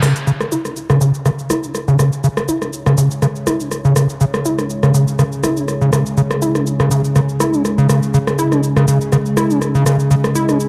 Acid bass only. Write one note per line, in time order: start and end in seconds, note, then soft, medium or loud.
0.02 0.13 C#3 medium
0.27 0.32 C#3 loud
0.52 0.67 E4 medium
0.65 0.74 C#4 medium
0.90 0.99 C#3 loud
1.01 1.12 C#3 medium
1.25 1.30 C#3 loud
1.50 1.65 E4 medium
1.63 1.73 C#4 loud
1.88 1.97 C#3 medium
1.99 2.10 C#3 medium
2.24 2.28 C#3 loud
2.48 2.63 E4 medium
2.62 2.71 C#4 loud
2.86 2.96 C#3 loud
2.98 3.09 C#3 medium
3.22 3.27 C#3 loud
3.47 3.62 E4 medium
3.60 3.69 C#4 loud
3.85 3.94 C#3 loud
3.96 4.07 C#3 medium
4.21 4.25 C#3 loud
4.45 4.60 E4 medium
4.59 4.68 C#4 loud
4.83 4.92 C#3 loud
4.94 5.05 C#3 medium
5.19 5.23 C#3 loud
5.44 5.58 E4 medium
5.57 5.66 C#4 loud
5.81 5.91 C#3 medium
5.93 6.04 C#3 medium
6.17 6.22 C#3 loud
6.42 6.57 E4 medium
6.55 6.65 C#4 loud
6.80 6.89 C#3 medium
6.91 7.02 C#3 medium
7.16 7.20 C#3 loud
7.40 7.55 E4 medium
7.53 7.63 C#4 loud
7.78 7.87 C#3 medium
7.89 8.00 C#3 medium
8.14 8.18 C#3 loud
8.39 8.53 E4 medium
8.52 8.61 C#4 loud
8.76 8.86 C#3 loud
8.88 8.99 C#3 medium
9.12 9.17 C#3 loud
9.37 9.52 E4 medium
9.50 9.60 C#4 loud
9.75 9.84 C#3 loud
9.86 9.97 C#3 medium
10.11 10.15 C#3 loud
10.35 10.50 E4 medium
10.49 10.58 C#4 loud